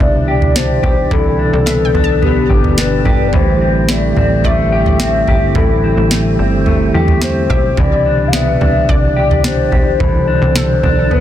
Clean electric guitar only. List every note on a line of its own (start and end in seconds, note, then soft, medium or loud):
0.00 1.11 E3 medium
0.00 0.54 D4 medium
0.00 0.28 G4 medium
0.28 0.83 G4 medium
0.55 1.38 D4 medium
0.83 2.49 G4 medium
1.11 3.33 E3 medium
1.39 1.93 D4 soft
1.67 2.21 B3 medium
1.94 2.76 D4 medium
2.22 3.39 B3 medium
2.50 3.05 G4 medium
2.78 3.39 D4 medium
3.05 3.92 G4 medium
3.33 5.55 E3 medium
3.61 4.17 C4 soft
3.89 4.44 A3 medium
4.17 5.00 C4 medium
4.45 6.10 A3 medium
4.72 5.28 G4 medium
5.00 5.83 C4 medium
5.28 6.94 G4 medium
5.56 7.77 E3 medium
5.84 6.39 C4 soft
6.11 6.65 A3 medium
6.39 7.22 C4 soft
6.67 7.83 A3 medium
6.94 7.49 G4 medium
7.22 8.05 C4 medium
7.50 9.16 G4 medium
7.78 10.00 E3 medium
8.06 8.60 D4 soft
8.34 8.89 B3 medium
8.61 9.43 D4 medium
9.16 9.71 G4 medium
9.44 10.26 D4 medium
9.72 11.20 G4 medium
10.00 11.20 E3 medium
10.27 10.82 D4 soft
10.83 11.20 D4 medium
11.11 11.20 B3 medium